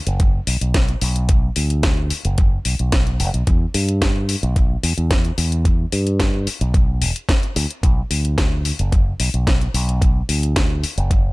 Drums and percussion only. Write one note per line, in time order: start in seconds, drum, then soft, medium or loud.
0.07 closed hi-hat medium
0.20 kick loud
0.20 closed hi-hat medium
0.47 open hi-hat loud
0.61 closed hi-hat medium
0.74 kick loud
0.74 snare loud
0.74 closed hi-hat medium
0.88 closed hi-hat soft
1.01 open hi-hat loud
1.16 closed hi-hat medium
1.29 kick loud
1.29 closed hi-hat medium
1.56 open hi-hat loud
1.70 closed hi-hat medium
1.83 kick loud
1.83 snare loud
1.83 closed hi-hat medium
2.10 open hi-hat loud
2.25 closed hi-hat medium
2.38 kick loud
2.38 closed hi-hat medium
2.65 open hi-hat loud
2.79 closed hi-hat medium
2.92 kick loud
2.92 snare loud
2.92 closed hi-hat medium
3.07 closed hi-hat soft
3.20 open hi-hat loud
3.34 closed hi-hat medium
3.47 kick loud
3.47 closed hi-hat medium
3.74 open hi-hat loud
3.89 closed hi-hat soft
4.02 kick loud
4.02 snare loud
4.02 closed hi-hat medium
4.29 open hi-hat loud
4.43 closed hi-hat medium
4.56 kick loud
4.56 closed hi-hat medium
4.83 open hi-hat loud
4.98 closed hi-hat medium
5.11 kick loud
5.11 snare loud
5.11 closed hi-hat medium
5.25 closed hi-hat soft
5.38 open hi-hat loud
5.52 closed hi-hat medium
5.65 kick loud
5.65 closed hi-hat medium
5.92 open hi-hat loud
6.07 closed hi-hat medium
6.20 kick loud
6.20 snare loud
6.20 closed hi-hat medium
6.47 open hi-hat loud
6.61 closed hi-hat soft
6.74 kick loud
6.74 closed hi-hat medium
7.02 open hi-hat loud
7.16 closed hi-hat medium
7.29 kick loud
7.29 snare loud
7.29 closed hi-hat medium
7.43 closed hi-hat soft
7.56 open hi-hat loud
7.71 closed hi-hat medium
7.83 kick loud
7.83 closed hi-hat medium
8.11 open hi-hat loud
8.25 closed hi-hat soft
8.38 kick loud
8.38 snare loud
8.38 closed hi-hat medium
8.65 open hi-hat loud
8.79 closed hi-hat soft
8.92 kick loud
8.92 closed hi-hat medium
9.20 open hi-hat loud
9.34 closed hi-hat soft
9.47 kick loud
9.47 snare loud
9.47 closed hi-hat medium
9.61 closed hi-hat soft
9.74 open hi-hat loud
9.89 closed hi-hat medium
10.02 kick loud
10.02 closed hi-hat medium
10.29 open hi-hat loud
10.43 closed hi-hat medium
10.56 kick loud
10.56 snare loud
10.56 closed hi-hat medium
10.84 open hi-hat loud
10.98 closed hi-hat medium
11.11 kick loud
11.11 closed hi-hat medium